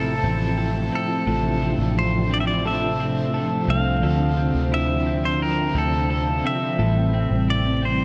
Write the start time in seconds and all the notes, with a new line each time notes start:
Already playing: A1 A2 C3 F3 A3 C4 E4 A4
0.22 A1 C4 E4
0.27 A3
0.58 A4
0.92 C4 A4
1.25 A1 A2 F3 D4 A4
1.29 A3 C4 E4
1.62 C4
1.79 A1
1.99 C5
2.31 C4 D5
2.40 E5
2.47 D5
2.64 F3 A3 C4 A4 E5
2.69 E4
3.00 A3 C4
3.34 A4
3.68 C2 C4 F5
4.00 D2 D3 F3 C4 D4 A4
4.07 C4
4.37 C4
4.55 D2
4.72 E4 E5
5.06 C4
5.25 C5
5.39 D3 F3 C4 A#4
5.44 E4
5.74 D2 C4 E4
5.78 F3 A4
6.10 A4
6.44 C4 E5
6.78 A1 A2 C3 E3 G3 A4
7.13 C4
7.31 A1
7.48 E4 D5
7.82 C4 C5